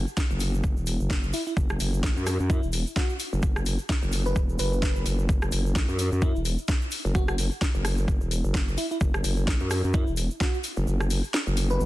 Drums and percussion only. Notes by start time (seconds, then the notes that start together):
0.07 shaker
0.17 kick, snare, shaker
0.30 shaker
0.40 open hi-hat, shaker
0.54 shaker
0.64 kick, shaker
0.77 shaker
0.86 open hi-hat, shaker
1.00 shaker
1.10 kick, snare, shaker
1.23 shaker
1.33 open hi-hat, shaker
1.47 shaker
1.57 kick, shaker
1.69 cross-stick, shaker
1.80 open hi-hat, shaker
1.94 shaker
2.03 kick, snare, shaker
2.17 shaker
2.27 cross-stick, open hi-hat, shaker
2.40 shaker
2.50 kick, shaker
2.63 shaker
2.72 open hi-hat, shaker
2.87 shaker
2.96 kick, snare, shaker
3.09 shaker
3.20 open hi-hat, shaker
3.33 shaker
3.43 kick, shaker
3.56 cross-stick, shaker
3.66 open hi-hat, shaker
3.79 shaker
3.89 kick, snare, shaker
4.03 shaker
4.12 open hi-hat, shaker
4.26 shaker
4.36 kick, shaker
4.49 shaker
4.59 open hi-hat, shaker
4.73 shaker
4.82 kick, snare, shaker
4.96 shaker
5.06 open hi-hat, shaker
5.19 shaker
5.29 kick, shaker
5.42 cross-stick, shaker
5.52 open hi-hat, shaker
5.66 shaker
5.75 kick, snare, shaker
5.89 shaker
5.99 open hi-hat, shaker
6.12 shaker
6.22 kick, shaker
6.36 shaker
6.45 open hi-hat, shaker
6.58 shaker
6.68 kick, snare, shaker
6.82 shaker
6.91 open hi-hat, shaker
7.06 shaker
7.15 kick, shaker
7.28 cross-stick, shaker
7.38 open hi-hat, shaker
7.51 shaker
7.61 kick, snare, shaker
7.74 shaker
7.85 cross-stick, open hi-hat, shaker
7.97 shaker
8.08 kick, shaker
8.21 shaker
8.31 open hi-hat, shaker
8.44 shaker
8.54 kick, snare, shaker
8.68 shaker
8.78 open hi-hat, shaker
8.91 shaker
9.01 kick, shaker
9.14 cross-stick, shaker
9.24 open hi-hat, shaker
9.37 shaker
9.47 kick, snare, shaker
9.60 shaker
9.70 cross-stick, open hi-hat, shaker
9.84 shaker
9.94 kick, shaker
10.07 shaker
10.17 open hi-hat, shaker
10.30 shaker
10.41 kick, snare, shaker
10.54 shaker
10.64 open hi-hat, shaker
10.77 shaker
10.87 shaker
11.01 cross-stick, shaker
11.10 open hi-hat, shaker
11.24 shaker
11.34 snare, shaker
11.47 shaker
11.57 open hi-hat, shaker
11.70 shaker
11.80 shaker